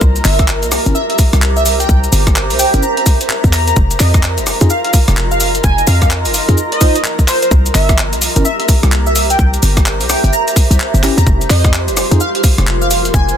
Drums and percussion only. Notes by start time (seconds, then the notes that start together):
0.01 kick, shaker
0.16 closed hi-hat, shaker
0.25 clap, open hi-hat, shaker
0.39 kick, cross-stick, closed hi-hat, shaker
0.48 clap, shaker
0.63 closed hi-hat, shaker
0.72 cross-stick, open hi-hat, shaker
0.86 closed hi-hat, shaker
0.95 shaker
1.10 closed hi-hat
1.19 kick, open hi-hat, shaker
1.33 cross-stick, closed hi-hat, shaker
1.42 clap, shaker
1.57 shaker
1.66 open hi-hat, shaker
1.80 closed hi-hat, shaker
1.89 kick, shaker
2.04 closed hi-hat, shaker
2.13 open hi-hat, shaker
2.27 kick, cross-stick, closed hi-hat, shaker
2.36 clap, shaker
2.50 open hi-hat, shaker
2.59 open hi-hat, shaker
2.74 closed hi-hat, shaker
2.83 shaker
2.97 closed hi-hat
3.06 kick, open hi-hat, shaker
3.21 closed hi-hat, shaker
3.30 clap, shaker
3.44 kick, closed hi-hat, shaker
3.53 clap, open hi-hat, shaker
3.67 closed hi-hat, shaker
3.76 kick, shaker
3.91 closed hi-hat, shaker
4.00 clap, open hi-hat, shaker
4.14 kick, cross-stick, closed hi-hat, shaker
4.23 clap, shaker
4.38 closed hi-hat, shaker
4.47 cross-stick, open hi-hat, shaker
4.61 closed hi-hat, shaker
4.70 shaker
4.84 closed hi-hat
4.94 kick, open hi-hat, shaker
5.08 cross-stick, closed hi-hat, shaker
5.17 clap, shaker
5.31 shaker
5.40 open hi-hat, shaker
5.55 closed hi-hat, shaker
5.64 kick, shaker
5.78 closed hi-hat, shaker
5.87 open hi-hat, shaker
6.02 kick, cross-stick, closed hi-hat, shaker
6.11 clap, shaker
6.25 open hi-hat, shaker
6.34 open hi-hat, shaker
6.49 closed hi-hat, shaker
6.58 shaker
6.72 closed hi-hat
6.81 kick, open hi-hat, shaker
6.95 closed hi-hat, shaker
7.04 clap, shaker
7.19 kick, closed hi-hat, shaker
7.28 clap, open hi-hat, shaker
7.42 closed hi-hat, shaker
7.51 kick, shaker
7.66 closed hi-hat, shaker
7.75 clap, open hi-hat, shaker
7.89 kick, cross-stick, closed hi-hat, shaker
7.98 clap, shaker
8.13 closed hi-hat, shaker
8.22 open hi-hat, shaker
8.36 closed hi-hat, shaker
8.45 shaker
8.60 closed hi-hat
8.69 kick, open hi-hat, shaker
8.83 cross-stick, closed hi-hat, shaker
8.92 clap, shaker
9.07 shaker
9.16 open hi-hat, shaker
9.30 closed hi-hat, shaker
9.39 kick, shaker
9.54 closed hi-hat, shaker
9.63 open hi-hat, shaker
9.77 kick, cross-stick, closed hi-hat, shaker
9.86 clap, shaker
10.01 open hi-hat, shaker
10.10 cross-stick, open hi-hat, shaker
10.24 closed hi-hat, shaker
10.33 shaker
10.48 closed hi-hat, shaker
10.56 kick, open hi-hat, shaker
10.71 closed hi-hat, shaker
10.80 clap, shaker
10.95 closed hi-hat, shaker
11.04 clap, open hi-hat, shaker
11.18 closed hi-hat, shaker
11.27 kick, shaker
11.41 closed hi-hat, shaker
11.50 clap, open hi-hat, shaker
11.64 kick, cross-stick, closed hi-hat, shaker
11.74 clap, shaker
11.88 closed hi-hat, shaker
11.97 cross-stick, open hi-hat, shaker
12.12 closed hi-hat, shaker
12.20 shaker
12.35 closed hi-hat
12.44 kick, open hi-hat, shaker
12.58 cross-stick, closed hi-hat, shaker
12.67 clap, shaker
12.82 shaker
12.91 open hi-hat, shaker
13.05 closed hi-hat, shaker
13.14 kick, shaker
13.29 closed hi-hat, shaker